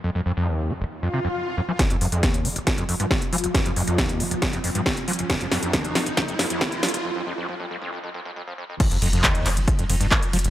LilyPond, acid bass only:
\new Staff \with { instrumentName = "Acid bass" } { \clef bass \time 4/4 \key c \phrygian \tempo 4 = 137 f,16 f,16 f,16 f,16 ees,8 f16 f,,16 r16 f,16 c16 f,16 r8 f,16 f16 | f,16 f,16 f,16 f,16 ees,8 f16 f,,16 r16 f,16 f,16 g,16 r8 f16 f,,16 | f,16 f,16 f,16 f,16 ees,8 f16 f,,16 r16 f,16 f,16 g,16 r8 f16 f,,16 | f,16 f,16 f,16 f,16 ees,8 f16 f,,16 f,16 f,16 f,16 f,16 ees,8 f16 f,,16 |
f,16 f,16 f,16 f,16 f,16 f,16 f,16 f,16 f,16 f,16 f,16 f,16 f,16 f,16 f,16 f,16 | f,16 f,16 f,16 f,16 ees,8 f16 f,,16 r16 f,16 f,16 g,16 r8 f16 f,,16 | }